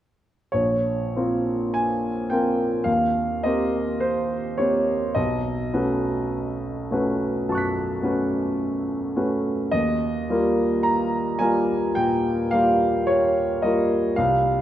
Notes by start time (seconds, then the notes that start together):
0.52 A#1 C#5
1.16 A#3 C4 F4 A#4
1.74 G#5
2.30 A#3 C4 F4 A#4 G5
2.84 D#2 F5
3.43 A#3 C4 G4 A#4 D#5
4.00 C5
4.58 A#3 C4 G4 A#4 C#5
5.15 B1 D#5
5.73 A3 C#4 F#4 B4
6.91 A3 C#4 F#4 B4
7.49 F#2 A5 C#6
7.55 F#6 B6
8.02 A3 C#4 F#4 B4
9.16 A3 C#4 F#4 B4
9.71 D#2 D#5
10.30 G3 A#3 F4 A#4
10.83 A#5
11.39 G3 A#3 F4 A#4 G#5
11.95 A#2 G5
12.51 G3 A#3 F4 A#4 F5
13.07 C#5
13.62 G3 A#3 F4 A#4 D#5
14.16 C2 F5